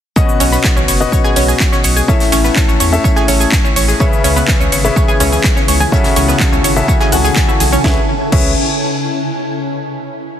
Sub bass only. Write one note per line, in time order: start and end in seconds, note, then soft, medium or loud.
0.40 0.58 B1 loud
0.76 0.85 B1 loud
0.88 1.06 F#1 loud
1.36 1.54 B1 medium
1.84 2.02 B1 medium
2.32 2.50 A1 loud
2.68 2.77 A1 loud
2.80 2.98 E2 loud
3.28 3.46 A1 medium
3.76 3.94 A1 medium
4.24 4.42 C#2 loud
4.60 4.69 C#2 loud
4.72 4.90 G#1 loud
5.20 5.38 C#2 medium
5.68 5.86 C#2 medium
6.16 6.34 C#2 loud
6.52 6.61 C#2 loud
6.64 6.82 G#1 loud
7.12 7.30 C#2 medium
7.60 7.78 B1 loud
7.84 7.98 C#2 loud
8.32 8.55 C#2 loud